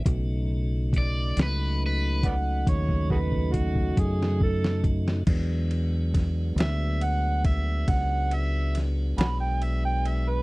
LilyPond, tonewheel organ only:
\new Staff \with { instrumentName = "Tonewheel organ" } { \clef bass \time 12/8 \key e \mixolydian \tempo 4. = 46 <cis fis a dis'>1. | <fis gis b d'>1. | }